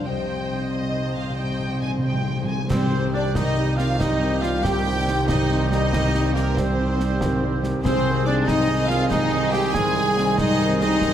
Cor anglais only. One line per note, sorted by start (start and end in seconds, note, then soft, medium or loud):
2.70 3.15 C4 medium
3.14 3.38 D4 medium
3.36 3.79 D#4 medium
3.77 3.97 F4 medium
3.98 4.43 D#4 medium
4.42 4.65 F4 medium
4.63 5.28 G4 medium
5.28 5.71 D#4 medium
5.71 6.34 D#4 medium
6.35 6.45 A#3 medium
6.57 7.61 C4 medium
7.83 8.23 C4 medium
8.27 8.46 D4 medium
8.47 8.89 D#4 medium
8.90 9.09 F4 medium
9.09 9.51 D#4 medium
9.52 9.77 G4 medium
9.75 10.40 G#4 medium
10.39 10.81 D#4 medium
10.82 11.14 D#4 medium